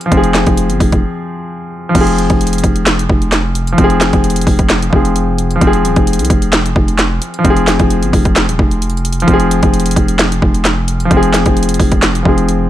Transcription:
Already playing: F3 C4 G#4
0.01 closed hi-hat
0.06 F3
0.12 F1 C4, kick, closed hi-hat
0.17 G#4
0.24 closed hi-hat
0.34 snare, clap, closed hi-hat
0.47 F1, kick, closed hi-hat
0.57 closed hi-hat
0.70 G1, closed hi-hat
0.80 F1, kick, open hi-hat
0.92 F1, kick, closed hi-hat
1.89 F3
1.95 F1 C4, kick, closed hi-hat, crash
2.01 G#4
2.07 closed hi-hat
2.18 closed hi-hat
2.30 F1, kick, closed hi-hat
2.41 closed hi-hat
2.47 closed hi-hat
2.53 closed hi-hat
2.58 closed hi-hat
2.64 F1, kick, closed hi-hat
2.76 closed hi-hat
2.86 snare, clap, closed hi-hat
2.99 closed hi-hat
3.09 F1, kick
3.22 closed hi-hat
3.32 snare, clap, closed hi-hat
3.55 closed hi-hat
3.67 closed hi-hat
3.72 F3
3.78 F1 C4, kick, closed hi-hat
3.84 G#4
3.90 closed hi-hat
4.01 snare, clap, closed hi-hat
4.13 F1, kick, closed hi-hat
4.24 closed hi-hat
4.30 closed hi-hat
4.36 closed hi-hat
4.41 closed hi-hat
4.47 F1, kick, open hi-hat
4.59 kick, closed hi-hat
4.70 snare, clap, closed hi-hat
4.82 closed hi-hat
4.90 F1 F3 C4, kick
4.96 G#4
5.05 closed hi-hat
5.16 closed hi-hat
5.38 closed hi-hat
5.51 closed hi-hat
5.56 F3
5.61 F1 C4, kick, closed hi-hat
5.67 G#4
5.73 closed hi-hat
5.84 D#1, closed hi-hat
5.96 F1, kick, closed hi-hat
6.07 closed hi-hat
6.13 closed hi-hat
6.19 C2, closed hi-hat
6.25 closed hi-hat
6.30 F1, kick, closed hi-hat
6.42 closed hi-hat
6.53 snare, clap, closed hi-hat
6.66 closed hi-hat
6.76 F1, kick
6.88 closed hi-hat
6.99 snare, clap, closed hi-hat
7.22 closed hi-hat
7.34 closed hi-hat
7.39 F3
7.44 F1 C4, kick, closed hi-hat
7.50 G#4
7.56 closed hi-hat
7.67 snare, clap, closed hi-hat
7.79 F1, kick, closed hi-hat
7.90 closed hi-hat
8.02 G1, closed hi-hat
8.13 F1, kick, open hi-hat
8.25 kick, closed hi-hat
8.36 snare, clap, closed hi-hat
8.48 D#1, closed hi-hat
8.59 F1, kick
8.71 closed hi-hat
8.82 closed hi-hat
8.90 closed hi-hat
8.97 closed hi-hat
9.05 closed hi-hat
9.13 closed hi-hat
9.20 F3, closed hi-hat
9.28 F1 C4, kick, closed hi-hat
9.34 G#4
9.40 closed hi-hat
9.51 closed hi-hat
9.63 F1, kick, closed hi-hat
9.74 closed hi-hat
9.80 closed hi-hat
9.86 closed hi-hat
9.91 closed hi-hat
9.96 F1, kick, closed hi-hat
10.08 closed hi-hat
10.19 snare, clap, closed hi-hat
10.32 closed hi-hat
10.42 F1, kick
10.54 closed hi-hat
10.65 snare, clap, closed hi-hat
10.88 closed hi-hat
11.00 closed hi-hat
11.05 F3
11.11 F1 C4, kick, closed hi-hat
11.17 G#4
11.23 closed hi-hat
11.34 snare, clap, closed hi-hat
11.46 F1, kick, closed hi-hat
11.57 closed hi-hat
11.63 closed hi-hat
11.69 closed hi-hat
11.74 closed hi-hat
11.80 F1, kick, open hi-hat
11.92 kick, closed hi-hat
12.02 snare, clap, closed hi-hat
12.15 closed hi-hat
12.23 F1 F3 C4, kick
12.28 G#4
12.38 closed hi-hat
12.49 closed hi-hat

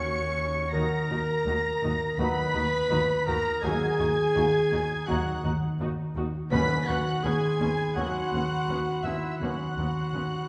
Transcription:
Already playing: D#2 C#4 D#4 F#4 C#5 C#6 F#6 G#6 C#7
0.02 D#3
0.37 D#4
0.72 D#2 D#3 F#3 D#4 F#4 A#4 A#5 A#6
1.09 D#2 D#3 D#4 F#4
1.45 D#2 D#3 D#4 F#4
1.82 D#2 D#4 F#4
2.17 D#2 D#3 F#3 D#4 F#4 B4 B5 B6
2.54 D#2 D#3 D#4 F#4
2.90 D#2 D#3 D#4 F#4
3.26 D#2 D#4 F#4 A#4 A#5 A#6
3.62 D#2 D#3 F#3 D#4 F#4 G#4 G#5 G#6
3.98 D#2 D#3 D#4 F#4
4.35 D#2 D#3 D#4 F#4
4.71 D#2 D#4 F#4
5.07 D#2 D#3 F#3 D#4 F#4 F#5 F#6
5.43 D#2 D#3 D#4 F#4
5.80 D#2 D#3 D#4 F#4
6.15 D#2 D#4 F#4
6.51 D#2 D#3 F#3 C#4 B4 B5 B6
6.88 D#2 D#3 C#4 F#4 B4 F#5 F#6
7.23 D#2 D#3 B3 C#4 G#4 G#5 C6 G#6
7.60 D#2 B3 C#4 D#4
7.95 D#2 D#3 F#3 B3 C#4 F#4 F#5 F#6
8.32 D#2 D#3 B3 C#4
8.68 D#2 D#3 B3 C#4
9.04 D#2 B3 C#4 D#4 E4 F#4 E5 E6
9.40 D#2 D#3 F#3 B3 C#4 F#4 F#5 F#6
9.76 D#2 D#3 B3 C#4
10.12 D#2 D#3 B3 C#4

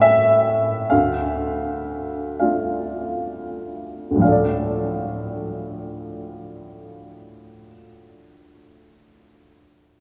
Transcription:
Already playing: A2
0.01 E5
0.90 D2 F5
2.40 A3 D4 F4 F5
4.11 D2
4.15 A2 F3
4.22 D4 F5
4.27 A4
4.32 D5

